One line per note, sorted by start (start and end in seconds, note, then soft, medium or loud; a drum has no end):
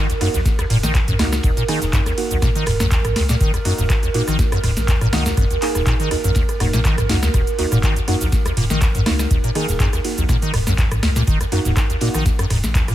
0.00 12.95 A#4 medium
0.10 0.13 D#2 medium
0.10 closed hi-hat medium
0.10 shaker soft
0.21 0.28 F#2 loud
0.21 0.36 A#3 medium
0.21 0.36 D#4 medium
0.21 0.36 F#4 loud
0.21 cross-stick medium
0.21 open hi-hat medium
0.21 ride medium
0.34 0.43 A#1 medium
0.34 0.40 D#2 medium
0.34 snare medium
0.34 closed hi-hat soft
0.34 shaker medium
0.45 kick loud
0.45 snare medium
0.45 closed hi-hat medium
0.45 ride medium
0.45 shaker medium
0.59 0.65 D#2 medium
0.59 cross-stick medium
0.59 closed hi-hat medium
0.59 ride soft
0.59 shaker soft
0.70 0.81 D#1 medium
0.70 0.77 A#2 loud
0.70 mid tom loud
0.70 open hi-hat loud
0.70 ride medium
0.83 1.16 A#1 medium
0.83 0.93 D#3 loud
0.83 snare medium
0.83 closed hi-hat soft
0.83 shaker medium
0.94 0.99 D#2 medium
0.94 kick loud
0.94 cross-stick medium
0.94 snare loud
0.94 clap loud
0.94 closed hi-hat medium
0.94 ride medium
0.94 shaker medium
1.07 1.14 F#2 loud
1.07 snare soft
1.07 closed hi-hat medium
1.07 mid tom loud
1.07 shaker soft
1.19 1.40 C#2 medium
1.19 1.27 D#2 medium
1.19 1.34 A#3 loud
1.19 1.34 D#4 medium
1.19 1.34 F#4 loud
1.19 cross-stick medium
1.19 snare soft
1.19 snare medium
1.19 open hi-hat medium
1.19 ride medium
1.33 cross-stick medium
1.33 snare medium
1.33 shaker medium
1.43 1.55 D#1 loud
1.43 1.51 D#2 medium
1.43 kick loud
1.43 closed hi-hat medium
1.43 ride loud
1.43 shaker medium
1.57 1.63 A#2 loud
1.57 closed hi-hat medium
1.57 shaker soft
1.68 1.79 D#3 loud
1.68 2.15 A#3 loud
1.68 2.15 D#4 medium
1.68 2.15 G#4 loud
1.68 cross-stick medium
1.68 open hi-hat loud
1.68 ride medium
1.82 1.91 D#1 medium
1.82 1.85 D#2 medium
1.82 snare medium
1.82 closed hi-hat soft
1.82 shaker medium
1.93 2.00 F#2 loud
1.93 kick loud
1.93 snare loud
1.93 clap loud
1.93 closed hi-hat medium
1.93 ride medium
1.93 shaker medium
2.06 2.12 D#2 medium
2.06 cross-stick medium
2.06 snare soft
2.06 closed hi-hat medium
2.06 shaker soft
2.18 2.40 A#3 medium
2.18 2.40 D#4 medium
2.18 2.40 F#4 medium
2.18 open hi-hat loud
2.18 ride medium
2.31 2.40 A#1 medium
2.31 2.37 D#2 medium
2.31 closed hi-hat soft
2.31 shaker medium
2.42 2.49 A#2 loud
2.42 kick loud
2.42 cross-stick medium
2.42 snare medium
2.42 closed hi-hat medium
2.42 ride medium
2.42 shaker medium
2.55 2.65 D#3 loud
2.55 closed hi-hat medium
2.55 shaker soft
2.66 2.78 D#1 medium
2.66 2.71 D#2 medium
2.66 cross-stick medium
2.66 mid tom loud
2.66 open hi-hat loud
2.66 ride medium
2.80 3.13 A#1 medium
2.80 2.86 F#2 loud
2.80 cross-stick medium
2.80 snare medium
2.80 closed hi-hat soft
2.80 shaker medium
2.91 2.99 D#2 medium
2.91 kick loud
2.91 snare loud
2.91 clap loud
2.91 closed hi-hat medium
2.91 ride medium
2.91 shaker medium
3.05 cross-stick medium
3.05 closed hi-hat medium
3.05 mid tom medium
3.05 shaker soft
3.16 3.36 C#2 medium
3.16 3.23 D#2 medium
3.16 cross-stick medium
3.16 snare medium
3.16 open hi-hat loud
3.16 ride medium
3.29 3.35 A#2 loud
3.29 snare medium
3.29 ride soft
3.29 shaker medium
3.41 3.51 D#1 loud
3.41 3.52 D#3 loud
3.41 kick loud
3.41 closed hi-hat medium
3.41 ride medium
3.41 shaker medium
3.54 3.58 D#2 medium
3.54 cross-stick medium
3.54 closed hi-hat medium
3.54 shaker soft
3.65 3.72 F#2 loud
3.65 3.88 A#3 loud
3.65 3.88 D#4 medium
3.65 3.88 F#4 loud
3.65 open hi-hat loud
3.65 ride medium
3.78 3.88 D#1 loud
3.78 3.85 D#2 medium
3.78 snare soft
3.78 closed hi-hat soft
3.78 mid tom medium
3.78 shaker medium
3.90 kick loud
3.90 cross-stick medium
3.90 snare loud
3.90 clap loud
3.90 closed hi-hat medium
3.90 ride loud
3.90 shaker medium
4.03 4.09 D#2 medium
4.03 closed hi-hat medium
4.03 shaker soft
4.14 4.22 A#2 loud
4.14 4.29 A#3 medium
4.14 4.29 D#4 medium
4.14 4.29 F#4 loud
4.14 open hi-hat loud
4.14 ride medium
4.27 4.37 A#1 medium
4.27 4.37 D#3 loud
4.27 cross-stick medium
4.27 snare soft
4.27 closed hi-hat soft
4.27 shaker medium
4.39 4.43 D#2 medium
4.39 kick loud
4.39 snare medium
4.39 closed hi-hat medium
4.39 ride medium
4.39 shaker medium
4.52 4.58 F#2 loud
4.52 cross-stick medium
4.52 closed hi-hat medium
4.52 ride soft
4.52 shaker soft
4.64 4.74 D#1 medium
4.64 4.71 D#2 medium
4.64 cross-stick medium
4.64 mid tom medium
4.64 open hi-hat loud
4.64 ride medium
4.77 5.09 A#1 medium
4.77 snare medium
4.77 closed hi-hat soft
4.77 shaker medium
4.88 4.95 D#2 medium
4.88 kick loud
4.88 snare loud
4.88 clap loud
4.88 closed hi-hat medium
4.88 ride medium
4.88 shaker medium
5.01 5.08 A#2 loud
5.01 cross-stick medium
5.01 snare soft
5.01 closed hi-hat medium
5.01 mid tom medium
5.01 shaker soft
5.13 5.33 C#2 medium
5.13 5.24 D#3 loud
5.13 5.27 A#3 loud
5.13 5.27 D#4 medium
5.13 5.27 F#4 loud
5.13 cross-stick medium
5.13 snare medium
5.13 snare soft
5.13 open hi-hat loud
5.13 ride medium
5.26 5.30 D#2 medium
5.26 snare medium
5.26 shaker medium
5.37 5.48 D#1 loud
5.37 5.45 F#2 loud
5.37 kick loud
5.37 cross-stick medium
5.37 closed hi-hat medium
5.37 ride loud
5.37 shaker medium
5.51 5.57 D#2 medium
5.51 closed hi-hat medium
5.51 shaker soft
5.62 6.08 A#3 loud
5.62 6.08 D#4 medium
5.62 6.08 G#4 loud
5.62 clap medium
5.62 open hi-hat loud
5.62 ride medium
5.75 5.84 D#1 loud
5.75 5.81 D#2 medium
5.75 cross-stick medium
5.75 snare medium
5.75 shaker medium
5.86 5.94 A#2 loud
5.86 kick loud
5.86 snare loud
5.86 clap loud
5.86 closed hi-hat medium
5.86 ride medium
5.86 shaker medium
6.00 6.09 D#3 loud
6.00 snare soft
6.00 closed hi-hat medium
6.00 shaker soft
6.11 6.15 D#2 medium
6.11 6.34 A#3 medium
6.11 6.34 D#4 medium
6.11 6.34 F#4 medium
6.11 cross-stick medium
6.11 open hi-hat loud
6.11 ride medium
6.24 6.34 A#1 medium
6.24 6.31 F#2 loud
6.24 closed hi-hat soft
6.24 shaker medium
6.35 6.43 D#2 medium
6.35 kick loud
6.35 snare medium
6.35 closed hi-hat medium
6.35 ride medium
6.35 shaker medium
6.49 cross-stick medium
6.49 closed hi-hat medium
6.49 shaker soft
6.60 6.71 D#1 medium
6.60 6.68 D#2 medium
6.60 6.75 A#3 medium
6.60 6.75 D#4 medium
6.60 6.75 F#4 medium
6.60 cross-stick medium
6.60 mid tom medium
6.60 open hi-hat loud
6.60 ride medium
6.73 7.06 A#1 medium
6.73 6.80 A#2 loud
6.73 snare medium
6.73 shaker medium
6.84 6.96 D#3 loud
6.84 kick loud
6.84 cross-stick medium
6.84 snare loud
6.84 clap loud
6.84 closed hi-hat medium
6.84 ride medium
6.84 shaker medium
6.98 7.02 D#2 medium
6.98 cross-stick medium
6.98 closed hi-hat medium
6.98 mid tom medium
6.98 shaker soft
7.09 7.30 C#2 medium
7.09 7.17 F#2 loud
7.09 7.32 A#3 medium
7.09 7.32 D#4 medium
7.09 7.32 F#4 loud
7.09 snare medium
7.09 open hi-hat loud
7.09 ride medium
7.23 7.29 D#2 medium
7.23 cross-stick medium
7.23 snare medium
7.23 closed hi-hat soft
7.23 ride soft
7.23 shaker medium
7.34 7.45 D#1 loud
7.34 7.41 D#2 medium
7.34 kick loud
7.34 cross-stick medium
7.34 closed hi-hat medium
7.34 ride medium
7.34 shaker medium
7.47 closed hi-hat medium
7.47 shaker soft
7.59 7.66 D#2 medium
7.59 7.81 A#3 loud
7.59 7.81 D#4 medium
7.59 7.81 F#4 loud
7.59 open hi-hat loud
7.59 ride medium
7.71 7.81 D#1 loud
7.71 7.78 A#2 loud
7.71 cross-stick medium
7.71 snare soft
7.71 closed hi-hat soft
7.71 mid tom medium
7.71 shaker medium
7.83 7.94 D#3 loud
7.83 kick loud
7.83 snare loud
7.83 clap loud
7.83 closed hi-hat medium
7.83 ride medium
7.83 shaker medium
7.96 8.00 D#2 medium
7.96 closed hi-hat medium
7.96 shaker soft
8.08 8.15 F#2 loud
8.08 8.23 A#3 medium
8.08 8.23 D#4 medium
8.08 8.23 F#4 loud
8.08 cross-stick medium
8.08 open hi-hat loud
8.08 ride medium
8.21 8.30 A#1 medium
8.21 8.27 D#2 medium
8.21 snare medium
8.21 closed hi-hat soft
8.21 shaker medium
8.32 kick loud
8.32 snare medium
8.32 closed hi-hat medium
8.32 ride medium
8.32 shaker medium
8.46 8.52 D#2 medium
8.46 cross-stick medium
8.46 closed hi-hat medium
8.46 ride soft
8.46 shaker soft
8.57 8.68 D#1 medium
8.57 8.64 A#2 loud
8.57 mid tom medium
8.57 open hi-hat loud
8.57 ride medium
8.70 9.03 A#1 medium
8.70 8.80 D#3 loud
8.70 snare medium
8.70 closed hi-hat soft
8.70 shaker medium
8.81 8.86 D#2 medium
8.81 kick loud
8.81 cross-stick medium
8.81 snare loud
8.81 clap loud
8.81 closed hi-hat medium
8.81 ride medium
8.81 shaker medium
8.95 9.01 F#2 loud
8.95 snare soft
8.95 closed hi-hat medium
8.95 mid tom medium
8.95 shaker soft
9.06 9.27 C#2 medium
9.06 9.13 D#2 medium
9.06 9.21 A#3 loud
9.06 9.21 D#4 medium
9.06 9.21 F#4 loud
9.06 cross-stick medium
9.06 snare medium
9.06 snare soft
9.06 open hi-hat loud
9.06 ride medium
9.19 cross-stick medium
9.19 snare medium
9.19 shaker medium
9.31 9.42 D#1 loud
9.31 9.38 D#2 medium
9.31 kick loud
9.31 closed hi-hat medium
9.31 ride medium
9.31 shaker medium
9.44 9.50 A#2 loud
9.44 closed hi-hat medium
9.44 shaker soft
9.55 9.66 D#3 loud
9.55 10.02 A#3 loud
9.55 10.02 D#4 medium
9.55 10.02 G#4 loud
9.55 cross-stick medium
9.55 open hi-hat loud
9.55 ride medium
9.68 9.78 D#1 medium
9.68 9.72 D#2 medium
9.68 snare medium
9.68 closed hi-hat soft
9.68 shaker medium
9.80 9.87 F#2 loud
9.80 kick loud
9.80 snare loud
9.80 clap loud
9.80 closed hi-hat medium
9.80 ride loud
9.80 shaker medium
9.93 9.99 D#2 medium
9.93 cross-stick medium
9.93 snare soft
9.93 closed hi-hat medium
9.93 shaker soft
10.04 10.27 A#3 medium
10.04 10.27 D#4 medium
10.04 10.27 F#4 medium
10.04 open hi-hat medium
10.04 ride medium
10.18 10.27 A#1 medium
10.18 10.24 D#2 medium
10.18 closed hi-hat soft
10.18 shaker medium
10.29 10.36 A#2 loud
10.29 kick loud
10.29 cross-stick medium
10.29 snare medium
10.29 closed hi-hat medium
10.29 ride medium
10.29 shaker medium
10.42 10.52 D#3 loud
10.42 closed hi-hat medium
10.42 shaker soft
10.54 10.65 D#1 medium
10.54 10.58 D#2 medium
10.54 cross-stick medium
10.54 mid tom medium
10.54 open hi-hat loud
10.54 ride medium
10.67 11.00 A#1 medium
10.67 10.73 F#2 loud
10.67 cross-stick medium
10.67 snare medium
10.67 closed hi-hat soft
10.67 shaker medium
10.78 10.86 D#2 medium
10.78 kick loud
10.78 snare loud
10.78 clap loud
10.78 closed hi-hat medium
10.78 ride medium
10.78 shaker medium
10.91 cross-stick medium
10.91 closed hi-hat medium
10.91 mid tom medium
10.91 shaker soft
11.03 11.23 C#2 medium
11.03 11.10 D#2 medium
11.03 cross-stick medium
11.03 snare medium
11.03 open hi-hat medium
11.03 ride medium
11.16 11.22 A#2 loud
11.16 snare medium
11.16 ride soft
11.16 shaker medium
11.27 11.38 D#1 loud
11.27 11.38 D#3 loud
11.27 kick loud
11.27 closed hi-hat medium
11.27 ride medium
11.27 shaker medium
11.41 11.44 D#2 medium
11.41 cross-stick medium
11.41 closed hi-hat medium
11.41 shaker soft
11.52 11.59 F#2 loud
11.52 11.74 A#3 loud
11.52 11.74 D#4 medium
11.52 11.74 F#4 loud
11.52 open hi-hat loud
11.52 ride medium
11.64 11.75 D#1 medium
11.64 11.72 D#2 medium
11.64 snare soft
11.64 closed hi-hat soft
11.64 mid tom medium
11.64 shaker medium
11.77 kick loud
11.77 cross-stick medium
11.77 snare loud
11.77 clap loud
11.77 closed hi-hat medium
11.77 ride medium
11.77 shaker medium
11.90 11.96 D#2 medium
11.90 closed hi-hat medium
11.90 shaker soft
12.01 12.08 A#2 loud
12.01 12.16 A#3 medium
12.01 12.16 D#4 medium
12.01 12.16 F#4 loud
12.01 open hi-hat medium
12.01 ride medium
12.14 12.24 A#1 medium
12.14 12.24 D#3 loud
12.14 cross-stick medium
12.14 snare soft
12.14 shaker medium
12.25 12.30 D#2 medium
12.25 kick loud
12.25 snare medium
12.25 closed hi-hat medium
12.25 ride medium
12.25 shaker medium
12.39 12.45 F#2 loud
12.39 cross-stick medium
12.39 closed hi-hat medium
12.39 ride soft
12.39 shaker soft
12.50 12.61 D#1 medium
12.50 12.58 D#2 medium
12.50 cross-stick medium
12.50 mid tom loud
12.50 open hi-hat loud
12.50 ride medium
12.64 12.95 A#1 medium
12.64 snare medium
12.64 closed hi-hat soft
12.64 shaker medium
12.74 12.82 D#2 medium
12.74 kick loud
12.74 snare loud
12.74 clap loud
12.74 closed hi-hat medium
12.74 ride medium
12.74 shaker medium
12.88 12.94 A#2 loud
12.88 cross-stick medium
12.88 snare soft
12.88 closed hi-hat medium
12.88 mid tom loud
12.88 shaker soft